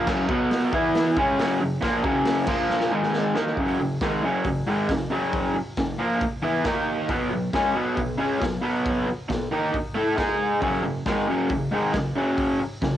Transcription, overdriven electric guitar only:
0.06 F#2 C#3 F#3
0.29 B2 F#3 B3
0.72 E3 B3 E4
1.17 C#3 G#3 C#4
1.38 F#2 C#3 F#3
1.61 F#2 C#3
1.81 A#2 F3 A#3
2.04 F#2 C#3 F#3
2.48 A#2 F3 A#3
2.91 G#2 D#3 G#3
3.35 D#3 A#3 D#4
3.57 F#2 C#3 F#3
3.80 F#2 C#3
4.02 G#2 D#3 G#3
4.23 F#2 C#3 F#3
4.45 F#2 C#3
4.67 G#2 D#3 G#3
4.89 F#2 C#3
5.10 F#2 C#3 F#3
5.56 muted overdriven electric guitar stroke
5.77 F#2 C#3
5.98 A#2 F3 A#3
6.21 muted overdriven electric guitar stroke
6.42 E3 B3 E4
6.65 D#3 A#3 D#4
7.09 B2 F#3 B3
7.30 B2 F#3
7.53 C#3 G#3 C#4
7.75 B2 F#3 B3
7.96 B2 F#3
8.17 C#3 G#3 C#4
8.40 B2 F#3
8.61 B2 F#3 B3
9.08 muted overdriven electric guitar stroke
9.29 B2 F#3
9.51 D#3 A#3 D#4
9.73 muted overdriven electric guitar stroke
9.95 A3 E4 A4
10.17 G#3 D#4 G#4
10.60 F#2 C#3 F#3
10.83 F#2 C#3
11.06 G#2 D#3 G#3
11.27 F#2 C#3 F#3
11.50 F#2 C#3
11.71 G#2 D#3 G#3
11.94 F#2 C#3
12.16 F#2 C#3 F#3
12.61 muted overdriven electric guitar stroke
12.82 F#2 C#3

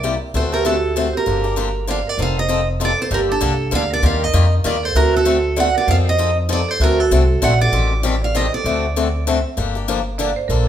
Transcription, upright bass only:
Already playing: C2
0.34 D2
1.27 G1
2.18 F1
3.11 G1
3.41 C2
3.72 D2
4.03 D#2
4.33 F2
4.65 D#2
4.95 D2
5.87 F2
6.80 D2
7.11 C2
7.41 A#1
7.72 A1
8.64 D2
9.57 G1
10.49 A#1

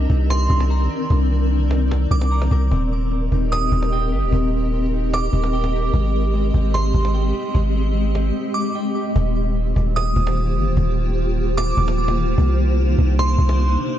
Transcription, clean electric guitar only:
Already playing: D4
0.09 D#4
0.50 D4
0.70 A#5
0.90 A#4
1.10 D4
1.30 D4
1.51 D4
1.70 D#4
2.11 D4
2.32 A#5
2.52 A#4
2.71 C4
2.92 C4
3.11 C4
3.32 D#4
3.72 C4
3.92 G5
4.12 G4
4.33 C4
4.52 C4
4.73 C4
4.93 D#4
5.33 C4
5.53 G5
5.73 G4
5.93 G#3
6.14 G#3
6.34 G#3
6.54 C4
6.95 G#3
7.14 G5
7.34 G4
7.54 G#3
7.74 G#3
7.95 G#3
8.16 C4
8.56 G#3
8.75 G5
8.96 G4

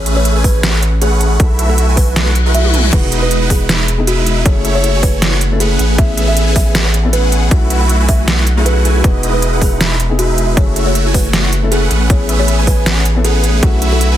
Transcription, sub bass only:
Already playing: A1
1.40 B1
2.93 E1
4.46 F#1
5.79 A1
7.51 B1
9.04 E1
10.57 F#1
11.91 A1
13.63 B1

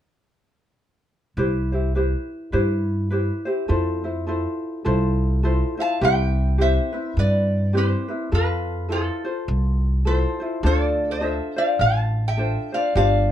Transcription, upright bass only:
1.37 C2
2.53 G2
3.69 F2
4.86 C2
6.01 C2
7.17 G2
8.32 F2
9.48 C2
10.63 D2
11.79 A1
12.95 G1

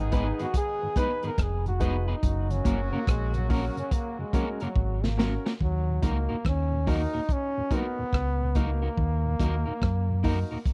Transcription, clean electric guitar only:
0.12 B3 D#4 G#4 B4
0.39 B3 D#4 G#4 B4
0.96 B3 D#4 G#4 B4
1.23 B3 D#4 G#4 B4
1.80 B3 D#4 G#4 B4
2.08 B3 D#4 G#4 B4
2.65 A#3 C#4 F#4 A#4
2.93 A#3 C#4 F#4 A#4
3.50 A#3 C#4 F#4 A#4
4.34 A#3 C#4 F#4 A#4
4.62 A#3 C#4 F#4 A#4
5.18 A#3 C#4 F#4 A#4
5.46 A#3 C#4 F#4 A#4
6.03 A#3 D#4 F#4 A#4
6.29 A#3 D#4 F#4 A#4
6.87 A#3 D#4 F#4 A#4
7.13 A#3 D#4 F#4 A#4
7.71 A#3 D#4 F#4 A#4
8.55 A#3 D#4 F#4 A#4
8.82 A#3 D#4 F#4 A#4
9.40 A#3 D#4 F#4 A#4
9.66 A#3 D#4 F#4 A#4
10.23 A#3 D#4 F#4 A#4
10.51 A#3 D#4 F#4 A#4

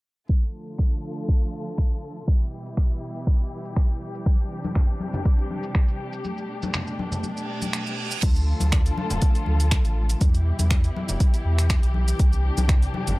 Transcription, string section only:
0.29 D3 F3 A3 F4 A4
2.28 B2 E3 G3 E4 G4
4.27 C3 D4
6.25 B2 A3 D4
8.23 D3 F3 A3 F4 A4
10.21 B2 E3 G3 E4 G4
12.20 C3 G3 D4

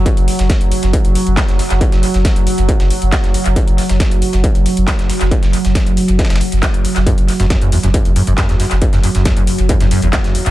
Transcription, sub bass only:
0.17 F#1
0.39 F#1
0.61 F#1
0.83 F#1
1.05 F#1
1.27 F#1
1.48 F#1
1.70 F#1
1.92 F#1
2.14 F#1
2.36 F#1
2.58 F#1
2.80 F#1
3.02 F#1
3.24 F#1
3.46 F#1
3.67 F#1
3.89 F#1
4.11 F#1
4.33 F#1
4.55 F#1
4.77 F#1
4.99 F#1
5.21 F#1
5.43 F#1
5.65 F#1
5.86 F#1
6.08 F#1
6.30 F#1
6.52 F#1
6.74 F#1
6.96 F#1
7.18 F#1
7.40 F#1
7.62 F#1
7.83 F#1
8.05 F#1
8.27 F#1
8.49 F#1
8.71 F#1
8.93 F#1
9.15 F#1
9.37 F#1
9.59 F#1
9.80 F#1
10.02 F#1
10.24 F#1
10.46 F#1

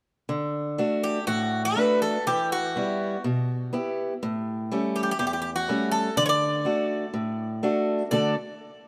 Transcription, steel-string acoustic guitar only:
0.29 D3
0.78 A3 D4 F#4
1.27 A2
1.77 A3 D4 F#4
2.27 E3
2.76 G3 B3 E4
3.24 B2
3.73 B3 E4 G4
4.23 A2
4.71 G3 A3 C#4
5.20 E2
5.68 G3 A3 C#4
6.17 D3
6.65 A3 D4 F#4
7.14 A2
7.63 A3 D4 F#4
8.12 D3 A3 D4 F#4 A4

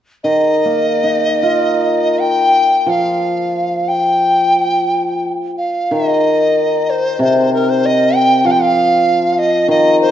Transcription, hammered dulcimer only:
0.24 D#3
0.65 A#3
1.04 D#4
1.43 F4
2.86 F3
5.91 D#3
7.19 C3
8.45 F3
9.68 D#3

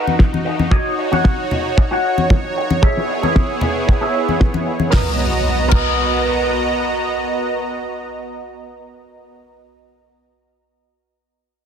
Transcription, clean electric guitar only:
Already playing: A#4 B4 F#5
0.45 muted clean electric guitar stroke
0.71 F#4 C#5 D#5
1.11 F#4 C#5 F#5
1.77 muted clean electric guitar stroke
1.91 F#4 C#5 F#5
2.56 muted clean electric guitar stroke
2.82 G#4 C#5 E5
3.22 G#4 C#5 E5
3.87 muted clean electric guitar stroke
4.01 G#4 C#5 E5
4.66 muted clean electric guitar stroke
4.90 A#4 B4
4.97 D#5
5.68 A#4 B4
5.75 D#5

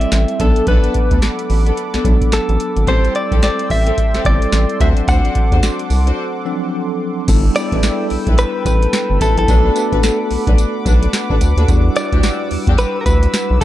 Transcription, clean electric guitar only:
Already playing: E5
0.41 A4
0.68 B4
2.33 A4
2.88 C5
3.16 D5
3.44 D5
3.71 E5
4.26 D5
4.81 E5
5.09 F#5
7.56 D5
8.39 B4
8.66 B4
9.22 A4
9.39 A4
11.97 D5
12.79 B4
13.01 A#4
13.06 B4
13.61 A4

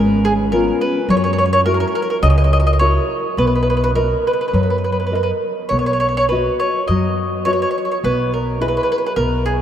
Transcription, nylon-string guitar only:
Already playing: G#3
0.52 B3 C#4 F4
1.09 F#3
1.66 E4 F#4 A#4
2.24 C#3
2.81 E4 F#4 A#4
3.38 B3
3.95 A#4 B4 D#5
4.54 F#3
5.12 A#4 B4 D#5
5.72 B3
6.32 F#4 B4 D#5
6.90 F#3
7.46 F#4 B4 D#5
8.04 B3
8.61 E4 G#4 D#5
9.17 B3

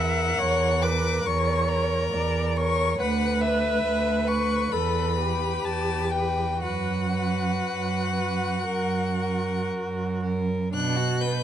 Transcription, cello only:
Already playing: E2
0.39 E2
1.25 E2
2.13 E2
2.99 D2
3.84 D2
4.72 E2
5.64 E2
6.63 F#2
7.64 F#2
8.68 F#2
9.72 F#2
10.74 B2

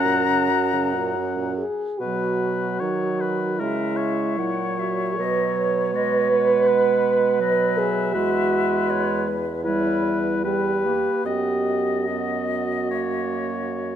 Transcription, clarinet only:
Already playing: C#4
2.01 F#3
2.81 F#3
3.61 G#3
4.38 F#3
5.19 F#3
5.94 G#3
6.31 G#3
7.41 F#3
8.15 G#3
9.65 G3
10.45 G3
10.86 A#3
11.27 B3
12.09 B3
12.91 A#3

